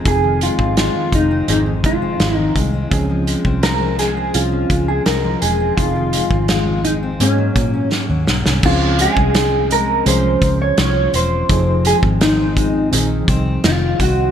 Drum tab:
CC |----------------|----------------|----------------|x---------------|
HH |x-x-x-x-x-x-x-x-|x-x-x-x-x-x-x-x-|x-x-x-x-x-x-----|--x-x-x-x-x-x-x-|
SD |----o-------o---|----o-o-----o---|----o-------o-oo|----o-------o---|
BD |o--o--o---o---o-|o--o------o-----|o--o------o-----|o--o------o-----|

CC |----------------|
HH |x-x-x-x-x-x-x-x-|
SD |----o-------o---|
BD |o--o--o---o---o-|